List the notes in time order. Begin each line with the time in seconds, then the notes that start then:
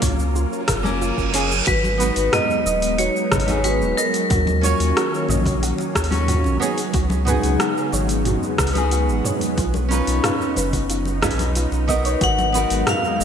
Already playing: F#3 A#3 C#4 F4 A#4
0.02 C#2 C#5, kick, mid tom, open hi-hat, high conga, cabasa
0.19 cabasa
0.35 F4, reverse cymbal, cabasa
0.53 cabasa
0.68 F#1 A#4, kick, cross-stick, mid tom, open hi-hat, low conga, cabasa
0.83 A#3 C#4 F4 A#4, high conga, cabasa
1.01 F4, cabasa
1.18 F#1, kick, cabasa
1.32 A#3 C#4 F4 G#4 C#5, open hi-hat, cabasa
1.51 cabasa
1.67 G#1 F#3 G#3 B3 D#4 F#4 B4, kick, open hi-hat, muted conga, cabasa
1.84 high conga, cabasa
1.98 B3 D#4 F#4 B4, open hi-hat, cabasa
2.02 B4
2.16 G#1, open hi-hat, cabasa
2.32 F#4 D#5, cross-stick, mid tom, open hi-hat, cabasa
2.50 cabasa
2.65 D#1 D#5, high conga, cabasa
2.82 open hi-hat, cabasa
2.98 F#4 C#5, open hi-hat, cabasa
3.16 cabasa
3.32 G#1 B4, kick, cross-stick, mid tom, open hi-hat, low conga, cabasa
3.40 open hi-hat
3.46 B3 D#4 F#4, open hi-hat, high conga, cabasa
3.50 G#4
3.64 F#4 B4, open hi-hat, cabasa
3.81 D#1, cabasa
3.97 A#4 D#5, cabasa
4.14 open hi-hat, cabasa
4.30 D#2 D#3 A#3 C#4 F#4, kick, mid tom, open hi-hat, muted conga, cabasa
4.47 high conga, cabasa
4.61 C#4 F4 F#4 C#5, open hi-hat, cabasa
4.66 C#5
4.80 D#2, open hi-hat, cabasa
4.96 F#4, cross-stick, open hi-hat, cabasa
5.14 cabasa
5.29 A#1 D#5, mid tom, high conga, cabasa
5.45 kick, open hi-hat, low conga, cabasa
5.62 F#4, open hi-hat, cabasa
5.78 muted conga, cabasa
5.95 D#2 C#5, kick, cross-stick, open hi-hat, cabasa
6.04 open hi-hat
6.11 C#4 F4 F#4 C#5, open hi-hat, high conga, cabasa
6.28 F#4, mid tom, open hi-hat, cabasa
6.44 A#1, muted conga, cabasa
6.60 C#3 G#3 B3 D#4 F#4 G#4 C#5, cabasa
6.78 open hi-hat, cabasa
6.93 C#2 F#4, kick, open hi-hat, muted conga, cabasa
7.10 high conga, cabasa
7.25 B3 D#4 F#4 G#4 B4, mid tom, open hi-hat, cabasa
7.43 C#2, open hi-hat, cabasa
7.60 F#4, cross-stick, open hi-hat, cabasa
7.77 cabasa
7.93 G#1 C#5, high conga, cabasa
8.09 open hi-hat, cabasa
8.25 F#4, mid tom, open hi-hat, cabasa
8.43 cabasa
8.58 C#2 B4, kick, cross-stick, open hi-hat, low conga, cabasa
8.67 open hi-hat
8.73 B3 D#4 F#4, open hi-hat, high conga, cabasa
8.77 G#4
8.91 F#4, open hi-hat, cabasa
9.08 G#1, cabasa
9.25 C#5, mid tom, cabasa
9.41 open hi-hat, cabasa
9.57 B1 D#4 F4, kick, open hi-hat, muted conga, cabasa
9.74 high conga, cabasa
9.89 C#4 D#4 F4 A#4, open hi-hat, cabasa
9.93 B4
10.07 B1, open hi-hat, cabasa
10.24 F4, cross-stick, mid tom, open hi-hat, cabasa
10.41 cabasa
10.56 F#1 B4, open hi-hat, high conga, cabasa
10.73 kick, open hi-hat, low conga, cabasa
10.90 F4, open hi-hat, cabasa
11.05 muted conga, cabasa
11.22 B1 C#4 D#4 F4 B4, kick, cross-stick, mid tom, open hi-hat, cabasa
11.31 open hi-hat
11.39 open hi-hat, high conga, cabasa
11.55 F4, open hi-hat, cabasa
11.72 B1, muted conga, cabasa
11.88 B3 D#4 F#4 A#4 D#5, kick, open hi-hat, cabasa
12.05 C#5, open hi-hat, cabasa
12.21 G#1 F#3 G#3 B3 F#4 F#5, kick, open hi-hat, muted conga, cabasa
12.39 high conga, cabasa
12.52 B3 D#4 F#4 B4, open hi-hat, cabasa
12.57 A#4
12.70 G#1, open hi-hat, cabasa
12.87 F#4 F5, cross-stick, mid tom, open hi-hat, cabasa
13.05 cabasa
13.20 D#1 D#5, high conga, cabasa